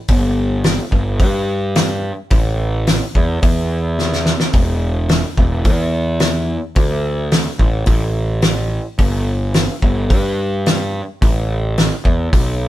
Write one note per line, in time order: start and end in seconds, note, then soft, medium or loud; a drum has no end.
0.08 0.77 G1 medium
0.08 kick loud
0.08 open hi-hat soft
0.64 snare medium
0.64 open hi-hat soft
0.92 1.21 G1 medium
0.92 kick medium
1.19 2.11 G2 medium
1.19 kick medium
1.19 open hi-hat soft
1.76 snare loud
1.76 open hi-hat soft
2.31 2.99 A1 medium
2.31 kick loud
2.31 open hi-hat soft
2.87 snare medium
2.87 open hi-hat soft
3.15 3.38 E2 medium
3.15 kick medium
3.42 4.33 E2 medium
3.42 kick loud
3.42 open hi-hat soft
3.99 snare medium
4.13 snare medium
4.26 snare medium
4.40 snare medium
4.53 5.22 E1 medium
4.53 kick medium
4.53 open hi-hat soft
5.09 snare loud
5.09 open hi-hat soft
5.37 5.67 E1 medium
5.37 kick medium
5.65 6.56 E2 medium
5.65 kick medium
5.65 open hi-hat soft
6.20 snare medium
6.20 open hi-hat soft
6.76 7.44 D2 medium
6.76 kick loud
6.76 open hi-hat soft
7.32 snare loud
7.32 open hi-hat soft
7.59 7.82 A1 medium
7.59 kick medium
7.86 8.78 A1 loud
7.86 kick medium
7.86 open hi-hat soft
8.42 snare loud
8.42 open hi-hat soft
8.98 9.67 G1 medium
8.98 kick medium
8.98 open hi-hat soft
9.54 snare medium
9.54 open hi-hat soft
9.82 10.11 G1 medium
9.82 kick medium
10.10 11.00 G2 medium
10.10 kick loud
10.10 open hi-hat soft
10.66 snare medium
10.66 open hi-hat soft
11.22 11.89 A1 medium
11.22 kick loud
11.22 open hi-hat soft
11.78 snare medium
11.78 open hi-hat soft
12.05 12.27 E2 medium
12.05 kick medium
12.33 12.68 B1 medium
12.33 kick loud
12.33 open hi-hat soft